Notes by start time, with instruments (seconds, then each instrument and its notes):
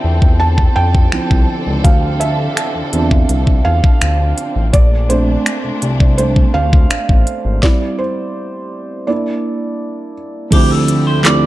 Already playing: string section D3 C4 D4 A4, felt piano C4 E4 F4 E5 G5
0.04 analog synth bass E2
0.22 kick
0.40 felt piano A5
0.58 kick
0.76 analog synth bass F2, felt piano G5
0.95 kick
1.12 analog synth bass C2, felt piano F3 C4 E4, finger snap
1.31 analog synth bass C2, kick
1.67 analog synth bass C#2
1.84 analog synth bass D2, felt piano F5, kick, closed hi-hat
2.20 felt piano E5, closed hi-hat
2.57 finger snap, closed hi-hat
2.75 analog synth bass E2
2.93 analog synth bass E2, felt piano C4 D4 F4, closed hi-hat
3.11 kick
3.29 analog synth bass C2, closed hi-hat
3.47 kick
3.65 analog synth bass E2, felt piano F5
3.84 kick
4.01 analog synth bass D2, finger snap, closed hi-hat
4.38 closed hi-hat
4.56 analog synth bass A1
4.73 analog synth bass A#1, string section A#2 A3 D4, felt piano D5, kick, closed hi-hat
5.09 felt piano A3 C4 D4 C5, closed hi-hat
5.46 finger snap, closed hi-hat
5.64 analog synth bass C2
5.82 analog synth bass C2, closed hi-hat
6.00 kick
6.18 felt piano A3 C4 D4 C5, closed hi-hat
6.36 kick
6.54 analog synth bass D2, felt piano F5
6.73 kick
6.91 analog synth bass A1, finger snap, closed hi-hat
7.09 analog synth bass A1, kick
7.27 closed hi-hat
7.45 analog synth bass G#1
7.63 felt piano G3 C4 E4 D5, kick, snare
7.99 felt piano C5
9.07 felt piano A#3 D4 E4 D5
10.51 analog synth bass D2, string section D3 F3 C4 E4 G4, felt piano F3 A3 C4 E4, clean electric guitar G4, kick, closed hi-hat, crash
10.55 felt piano G4
10.71 clean electric guitar A4
10.88 closed hi-hat
11.07 clean electric guitar C5
11.23 felt piano F3 A3 C4 E4, clean electric guitar D5, clap, closed hi-hat
11.27 felt piano G4